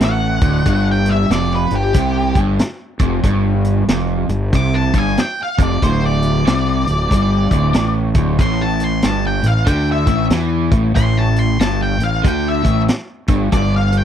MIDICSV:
0, 0, Header, 1, 5, 480
1, 0, Start_track
1, 0, Tempo, 643777
1, 492, Time_signature, 4, 2, 24, 8
1, 10468, End_track
2, 0, Start_track
2, 0, Title_t, "Lead electric guitar"
2, 0, Program_c, 0, 29
2, 33, Note_on_c, 0, 78, 88
2, 645, Note_off_c, 0, 78, 0
2, 683, Note_on_c, 0, 79, 79
2, 821, Note_on_c, 0, 76, 84
2, 824, Note_off_c, 0, 79, 0
2, 973, Note_off_c, 0, 76, 0
2, 982, Note_on_c, 0, 74, 82
2, 1134, Note_off_c, 0, 74, 0
2, 1158, Note_on_c, 0, 71, 80
2, 1302, Note_off_c, 0, 71, 0
2, 1306, Note_on_c, 0, 67, 92
2, 1767, Note_off_c, 0, 67, 0
2, 3397, Note_on_c, 0, 86, 101
2, 3542, Note_on_c, 0, 81, 89
2, 3543, Note_off_c, 0, 86, 0
2, 3695, Note_off_c, 0, 81, 0
2, 3717, Note_on_c, 0, 80, 79
2, 3864, Note_off_c, 0, 80, 0
2, 3881, Note_on_c, 0, 79, 77
2, 4025, Note_off_c, 0, 79, 0
2, 4046, Note_on_c, 0, 77, 81
2, 4188, Note_off_c, 0, 77, 0
2, 4198, Note_on_c, 0, 74, 84
2, 4344, Note_off_c, 0, 74, 0
2, 4350, Note_on_c, 0, 72, 99
2, 4500, Note_off_c, 0, 72, 0
2, 4515, Note_on_c, 0, 74, 89
2, 5916, Note_off_c, 0, 74, 0
2, 6271, Note_on_c, 0, 84, 95
2, 6420, Note_off_c, 0, 84, 0
2, 6428, Note_on_c, 0, 81, 75
2, 6578, Note_off_c, 0, 81, 0
2, 6591, Note_on_c, 0, 84, 88
2, 6740, Note_off_c, 0, 84, 0
2, 6751, Note_on_c, 0, 81, 85
2, 6899, Note_off_c, 0, 81, 0
2, 6910, Note_on_c, 0, 79, 82
2, 7057, Note_on_c, 0, 77, 75
2, 7059, Note_off_c, 0, 79, 0
2, 7212, Note_off_c, 0, 77, 0
2, 7212, Note_on_c, 0, 79, 74
2, 7369, Note_off_c, 0, 79, 0
2, 7395, Note_on_c, 0, 76, 93
2, 7639, Note_off_c, 0, 76, 0
2, 8173, Note_on_c, 0, 84, 118
2, 8329, Note_off_c, 0, 84, 0
2, 8333, Note_on_c, 0, 81, 88
2, 8488, Note_off_c, 0, 81, 0
2, 8492, Note_on_c, 0, 84, 99
2, 8648, Note_off_c, 0, 84, 0
2, 8648, Note_on_c, 0, 81, 81
2, 8805, Note_off_c, 0, 81, 0
2, 8817, Note_on_c, 0, 79, 81
2, 8970, Note_off_c, 0, 79, 0
2, 8973, Note_on_c, 0, 77, 83
2, 9128, Note_off_c, 0, 77, 0
2, 9153, Note_on_c, 0, 79, 78
2, 9298, Note_off_c, 0, 79, 0
2, 9307, Note_on_c, 0, 76, 88
2, 9552, Note_off_c, 0, 76, 0
2, 10093, Note_on_c, 0, 74, 114
2, 10245, Note_off_c, 0, 74, 0
2, 10261, Note_on_c, 0, 77, 83
2, 10409, Note_off_c, 0, 77, 0
2, 10420, Note_on_c, 0, 79, 91
2, 10468, Note_off_c, 0, 79, 0
2, 10468, End_track
3, 0, Start_track
3, 0, Title_t, "Overdriven electric guitar"
3, 0, Program_c, 1, 29
3, 8, Note_on_c, 1, 45, 79
3, 303, Note_off_c, 1, 45, 0
3, 316, Note_on_c, 1, 38, 95
3, 488, Note_off_c, 1, 38, 0
3, 498, Note_on_c, 1, 43, 107
3, 971, Note_off_c, 1, 43, 0
3, 976, Note_on_c, 1, 41, 95
3, 1268, Note_off_c, 1, 41, 0
3, 1288, Note_on_c, 1, 43, 65
3, 1425, Note_off_c, 1, 43, 0
3, 1458, Note_on_c, 1, 48, 89
3, 1750, Note_off_c, 1, 48, 0
3, 1771, Note_on_c, 1, 43, 93
3, 1938, Note_off_c, 1, 43, 0
3, 2241, Note_on_c, 1, 41, 104
3, 2413, Note_off_c, 1, 41, 0
3, 2423, Note_on_c, 1, 43, 101
3, 2895, Note_off_c, 1, 43, 0
3, 2903, Note_on_c, 1, 41, 90
3, 3193, Note_off_c, 1, 41, 0
3, 3212, Note_on_c, 1, 43, 69
3, 3349, Note_off_c, 1, 43, 0
3, 3384, Note_on_c, 1, 48, 86
3, 3674, Note_off_c, 1, 48, 0
3, 3688, Note_on_c, 1, 43, 105
3, 3857, Note_off_c, 1, 43, 0
3, 4168, Note_on_c, 1, 41, 92
3, 4337, Note_off_c, 1, 41, 0
3, 4346, Note_on_c, 1, 38, 105
3, 4817, Note_off_c, 1, 38, 0
3, 4823, Note_on_c, 1, 48, 98
3, 5114, Note_off_c, 1, 48, 0
3, 5123, Note_on_c, 1, 38, 64
3, 5264, Note_off_c, 1, 38, 0
3, 5309, Note_on_c, 1, 43, 90
3, 5596, Note_off_c, 1, 43, 0
3, 5612, Note_on_c, 1, 38, 96
3, 5779, Note_off_c, 1, 38, 0
3, 5783, Note_on_c, 1, 45, 82
3, 6073, Note_off_c, 1, 45, 0
3, 6084, Note_on_c, 1, 38, 97
3, 6255, Note_off_c, 1, 38, 0
3, 6262, Note_on_c, 1, 45, 110
3, 6731, Note_off_c, 1, 45, 0
3, 6734, Note_on_c, 1, 43, 82
3, 7025, Note_off_c, 1, 43, 0
3, 7028, Note_on_c, 1, 45, 71
3, 7176, Note_off_c, 1, 45, 0
3, 7203, Note_on_c, 1, 50, 85
3, 7502, Note_off_c, 1, 50, 0
3, 7511, Note_on_c, 1, 45, 87
3, 7687, Note_off_c, 1, 45, 0
3, 7698, Note_on_c, 1, 52, 91
3, 7989, Note_off_c, 1, 52, 0
3, 7990, Note_on_c, 1, 45, 87
3, 8156, Note_off_c, 1, 45, 0
3, 8165, Note_on_c, 1, 45, 99
3, 8643, Note_off_c, 1, 45, 0
3, 8647, Note_on_c, 1, 43, 93
3, 8939, Note_off_c, 1, 43, 0
3, 8942, Note_on_c, 1, 45, 66
3, 9090, Note_off_c, 1, 45, 0
3, 9121, Note_on_c, 1, 50, 90
3, 9418, Note_off_c, 1, 50, 0
3, 9418, Note_on_c, 1, 45, 92
3, 9598, Note_off_c, 1, 45, 0
3, 9910, Note_on_c, 1, 43, 94
3, 10069, Note_off_c, 1, 43, 0
3, 10078, Note_on_c, 1, 43, 107
3, 10468, Note_off_c, 1, 43, 0
3, 10468, End_track
4, 0, Start_track
4, 0, Title_t, "Fingered electric bass"
4, 0, Program_c, 2, 33
4, 4, Note_on_c, 2, 33, 79
4, 289, Note_off_c, 2, 33, 0
4, 306, Note_on_c, 2, 26, 92
4, 476, Note_off_c, 2, 26, 0
4, 490, Note_on_c, 2, 31, 92
4, 943, Note_off_c, 2, 31, 0
4, 967, Note_on_c, 2, 29, 81
4, 1252, Note_off_c, 2, 29, 0
4, 1274, Note_on_c, 2, 31, 66
4, 1441, Note_off_c, 2, 31, 0
4, 1455, Note_on_c, 2, 36, 85
4, 1736, Note_off_c, 2, 36, 0
4, 1754, Note_on_c, 2, 31, 80
4, 1922, Note_off_c, 2, 31, 0
4, 2235, Note_on_c, 2, 29, 99
4, 2402, Note_off_c, 2, 29, 0
4, 2417, Note_on_c, 2, 31, 98
4, 2868, Note_off_c, 2, 31, 0
4, 2890, Note_on_c, 2, 29, 74
4, 3175, Note_off_c, 2, 29, 0
4, 3196, Note_on_c, 2, 31, 82
4, 3364, Note_off_c, 2, 31, 0
4, 3375, Note_on_c, 2, 36, 85
4, 3657, Note_off_c, 2, 36, 0
4, 3683, Note_on_c, 2, 31, 74
4, 3847, Note_off_c, 2, 31, 0
4, 4166, Note_on_c, 2, 29, 100
4, 4330, Note_off_c, 2, 29, 0
4, 4338, Note_on_c, 2, 26, 98
4, 4789, Note_off_c, 2, 26, 0
4, 4823, Note_on_c, 2, 36, 89
4, 5102, Note_off_c, 2, 36, 0
4, 5135, Note_on_c, 2, 26, 77
4, 5294, Note_off_c, 2, 26, 0
4, 5301, Note_on_c, 2, 31, 91
4, 5580, Note_off_c, 2, 31, 0
4, 5603, Note_on_c, 2, 26, 86
4, 5767, Note_off_c, 2, 26, 0
4, 5786, Note_on_c, 2, 33, 91
4, 6063, Note_off_c, 2, 33, 0
4, 6076, Note_on_c, 2, 26, 88
4, 6244, Note_off_c, 2, 26, 0
4, 6259, Note_on_c, 2, 33, 86
4, 6708, Note_off_c, 2, 33, 0
4, 6739, Note_on_c, 2, 31, 78
4, 7019, Note_off_c, 2, 31, 0
4, 7042, Note_on_c, 2, 33, 68
4, 7206, Note_off_c, 2, 33, 0
4, 7210, Note_on_c, 2, 38, 84
4, 7493, Note_off_c, 2, 38, 0
4, 7505, Note_on_c, 2, 33, 68
4, 7677, Note_off_c, 2, 33, 0
4, 7684, Note_on_c, 2, 40, 84
4, 7970, Note_off_c, 2, 40, 0
4, 7994, Note_on_c, 2, 33, 92
4, 8161, Note_off_c, 2, 33, 0
4, 8171, Note_on_c, 2, 33, 84
4, 8622, Note_off_c, 2, 33, 0
4, 8645, Note_on_c, 2, 31, 86
4, 8929, Note_off_c, 2, 31, 0
4, 8935, Note_on_c, 2, 33, 68
4, 9109, Note_off_c, 2, 33, 0
4, 9136, Note_on_c, 2, 38, 78
4, 9414, Note_off_c, 2, 38, 0
4, 9433, Note_on_c, 2, 33, 84
4, 9598, Note_off_c, 2, 33, 0
4, 9905, Note_on_c, 2, 31, 93
4, 10073, Note_off_c, 2, 31, 0
4, 10085, Note_on_c, 2, 31, 91
4, 10468, Note_off_c, 2, 31, 0
4, 10468, End_track
5, 0, Start_track
5, 0, Title_t, "Drums"
5, 4, Note_on_c, 9, 42, 76
5, 8, Note_on_c, 9, 38, 100
5, 78, Note_off_c, 9, 42, 0
5, 83, Note_off_c, 9, 38, 0
5, 308, Note_on_c, 9, 42, 57
5, 311, Note_on_c, 9, 36, 110
5, 382, Note_off_c, 9, 42, 0
5, 386, Note_off_c, 9, 36, 0
5, 489, Note_on_c, 9, 42, 74
5, 491, Note_on_c, 9, 36, 93
5, 563, Note_off_c, 9, 42, 0
5, 566, Note_off_c, 9, 36, 0
5, 788, Note_on_c, 9, 42, 56
5, 863, Note_off_c, 9, 42, 0
5, 975, Note_on_c, 9, 42, 66
5, 980, Note_on_c, 9, 38, 92
5, 1050, Note_off_c, 9, 42, 0
5, 1054, Note_off_c, 9, 38, 0
5, 1126, Note_on_c, 9, 38, 30
5, 1201, Note_off_c, 9, 38, 0
5, 1272, Note_on_c, 9, 42, 53
5, 1346, Note_off_c, 9, 42, 0
5, 1447, Note_on_c, 9, 42, 80
5, 1451, Note_on_c, 9, 36, 92
5, 1521, Note_off_c, 9, 42, 0
5, 1526, Note_off_c, 9, 36, 0
5, 1755, Note_on_c, 9, 36, 92
5, 1759, Note_on_c, 9, 42, 58
5, 1830, Note_off_c, 9, 36, 0
5, 1833, Note_off_c, 9, 42, 0
5, 1933, Note_on_c, 9, 42, 81
5, 1938, Note_on_c, 9, 38, 113
5, 2008, Note_off_c, 9, 42, 0
5, 2012, Note_off_c, 9, 38, 0
5, 2231, Note_on_c, 9, 42, 70
5, 2235, Note_on_c, 9, 36, 106
5, 2306, Note_off_c, 9, 42, 0
5, 2310, Note_off_c, 9, 36, 0
5, 2412, Note_on_c, 9, 42, 72
5, 2413, Note_on_c, 9, 36, 94
5, 2487, Note_off_c, 9, 42, 0
5, 2488, Note_off_c, 9, 36, 0
5, 2718, Note_on_c, 9, 42, 62
5, 2793, Note_off_c, 9, 42, 0
5, 2896, Note_on_c, 9, 42, 83
5, 2901, Note_on_c, 9, 38, 106
5, 2971, Note_off_c, 9, 42, 0
5, 2975, Note_off_c, 9, 38, 0
5, 3201, Note_on_c, 9, 42, 62
5, 3275, Note_off_c, 9, 42, 0
5, 3377, Note_on_c, 9, 36, 90
5, 3379, Note_on_c, 9, 42, 77
5, 3452, Note_off_c, 9, 36, 0
5, 3453, Note_off_c, 9, 42, 0
5, 3682, Note_on_c, 9, 36, 91
5, 3682, Note_on_c, 9, 42, 57
5, 3756, Note_off_c, 9, 36, 0
5, 3757, Note_off_c, 9, 42, 0
5, 3858, Note_on_c, 9, 42, 74
5, 3863, Note_on_c, 9, 38, 103
5, 3933, Note_off_c, 9, 42, 0
5, 3937, Note_off_c, 9, 38, 0
5, 4164, Note_on_c, 9, 36, 116
5, 4170, Note_on_c, 9, 42, 61
5, 4239, Note_off_c, 9, 36, 0
5, 4245, Note_off_c, 9, 42, 0
5, 4342, Note_on_c, 9, 36, 86
5, 4342, Note_on_c, 9, 42, 68
5, 4416, Note_off_c, 9, 36, 0
5, 4417, Note_off_c, 9, 42, 0
5, 4641, Note_on_c, 9, 42, 55
5, 4716, Note_off_c, 9, 42, 0
5, 4824, Note_on_c, 9, 42, 74
5, 4829, Note_on_c, 9, 38, 109
5, 4899, Note_off_c, 9, 42, 0
5, 4904, Note_off_c, 9, 38, 0
5, 5125, Note_on_c, 9, 42, 60
5, 5200, Note_off_c, 9, 42, 0
5, 5301, Note_on_c, 9, 36, 87
5, 5307, Note_on_c, 9, 42, 80
5, 5375, Note_off_c, 9, 36, 0
5, 5382, Note_off_c, 9, 42, 0
5, 5600, Note_on_c, 9, 36, 86
5, 5605, Note_on_c, 9, 42, 57
5, 5675, Note_off_c, 9, 36, 0
5, 5680, Note_off_c, 9, 42, 0
5, 5771, Note_on_c, 9, 42, 75
5, 5775, Note_on_c, 9, 38, 109
5, 5846, Note_off_c, 9, 42, 0
5, 5850, Note_off_c, 9, 38, 0
5, 6073, Note_on_c, 9, 42, 59
5, 6076, Note_on_c, 9, 36, 104
5, 6147, Note_off_c, 9, 42, 0
5, 6151, Note_off_c, 9, 36, 0
5, 6255, Note_on_c, 9, 36, 103
5, 6257, Note_on_c, 9, 42, 74
5, 6329, Note_off_c, 9, 36, 0
5, 6332, Note_off_c, 9, 42, 0
5, 6561, Note_on_c, 9, 42, 64
5, 6635, Note_off_c, 9, 42, 0
5, 6728, Note_on_c, 9, 42, 80
5, 6732, Note_on_c, 9, 38, 93
5, 6802, Note_off_c, 9, 42, 0
5, 6807, Note_off_c, 9, 38, 0
5, 7034, Note_on_c, 9, 42, 62
5, 7109, Note_off_c, 9, 42, 0
5, 7206, Note_on_c, 9, 42, 72
5, 7209, Note_on_c, 9, 36, 89
5, 7281, Note_off_c, 9, 42, 0
5, 7283, Note_off_c, 9, 36, 0
5, 7508, Note_on_c, 9, 36, 88
5, 7508, Note_on_c, 9, 42, 58
5, 7582, Note_off_c, 9, 42, 0
5, 7583, Note_off_c, 9, 36, 0
5, 7682, Note_on_c, 9, 42, 82
5, 7686, Note_on_c, 9, 38, 102
5, 7756, Note_off_c, 9, 42, 0
5, 7761, Note_off_c, 9, 38, 0
5, 7990, Note_on_c, 9, 36, 107
5, 7993, Note_on_c, 9, 42, 62
5, 8065, Note_off_c, 9, 36, 0
5, 8068, Note_off_c, 9, 42, 0
5, 8171, Note_on_c, 9, 36, 100
5, 8173, Note_on_c, 9, 42, 76
5, 8245, Note_off_c, 9, 36, 0
5, 8248, Note_off_c, 9, 42, 0
5, 8473, Note_on_c, 9, 42, 54
5, 8547, Note_off_c, 9, 42, 0
5, 8652, Note_on_c, 9, 42, 79
5, 8657, Note_on_c, 9, 38, 106
5, 8727, Note_off_c, 9, 42, 0
5, 8731, Note_off_c, 9, 38, 0
5, 8949, Note_on_c, 9, 42, 59
5, 9024, Note_off_c, 9, 42, 0
5, 9130, Note_on_c, 9, 36, 98
5, 9132, Note_on_c, 9, 42, 69
5, 9204, Note_off_c, 9, 36, 0
5, 9207, Note_off_c, 9, 42, 0
5, 9430, Note_on_c, 9, 36, 86
5, 9435, Note_on_c, 9, 42, 54
5, 9505, Note_off_c, 9, 36, 0
5, 9510, Note_off_c, 9, 42, 0
5, 9606, Note_on_c, 9, 42, 75
5, 9610, Note_on_c, 9, 38, 106
5, 9680, Note_off_c, 9, 42, 0
5, 9685, Note_off_c, 9, 38, 0
5, 9899, Note_on_c, 9, 42, 60
5, 9905, Note_on_c, 9, 36, 105
5, 9974, Note_off_c, 9, 42, 0
5, 9979, Note_off_c, 9, 36, 0
5, 10080, Note_on_c, 9, 42, 76
5, 10084, Note_on_c, 9, 36, 94
5, 10155, Note_off_c, 9, 42, 0
5, 10158, Note_off_c, 9, 36, 0
5, 10382, Note_on_c, 9, 42, 62
5, 10457, Note_off_c, 9, 42, 0
5, 10468, End_track
0, 0, End_of_file